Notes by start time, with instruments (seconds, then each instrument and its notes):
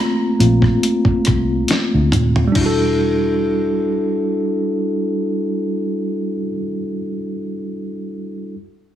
Already playing: tine electric piano A3 A#3 C4 F4 A#5
0.40 fingered electric bass A#1, tine electric piano A3 A#3 C4 F4, closed hi-hat
0.62 kick, cross-stick
0.83 closed hi-hat
1.05 muted fingered electric bass stroke, kick
1.25 fingered electric bass C2, kick, cross-stick, closed hi-hat
1.68 snare, closed hi-hat
1.94 fingered electric bass D2
2.12 fingered electric bass D#1, closed hi-hat, mid tom
2.36 floor tom
2.47 tine electric piano G3
2.52 fingered electric bass E1, tine electric piano D4, kick, crash
2.57 tine electric piano E4
2.61 tine electric piano F#4
2.66 tine electric piano A4